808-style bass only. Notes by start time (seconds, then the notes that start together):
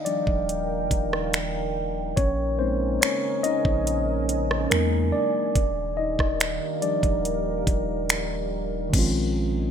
0.27 D#1
0.91 D#1
2.17 A#1
3.65 A#1
4.71 E2
5.56 D#1
6.19 D#1
7.03 D#1
7.67 D#1
8.94 A#1